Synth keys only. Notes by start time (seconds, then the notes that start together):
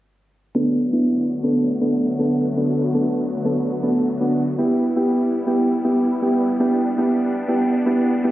0.55 B3 D4 A4
0.93 B3 D4 E4
1.43 B3 D4 A4
1.81 B3 D4 A4
2.19 B3 D4 A4
2.57 B3 D4 A4
2.94 B3 D4 A4
3.45 B3 D4 A4
3.83 B3 D4 A4
4.20 B3 D4 F#4
4.58 B3 E4 G4
4.96 B3 E4 G4
5.46 B3 E4 G4
5.84 B3 E4 G4
6.22 B3 E4 G4
6.60 B3 E4 G4
6.98 B3 E4 G4
7.48 B3 E4 G4
7.86 B3 E4 G4
8.24 B3 E4 G4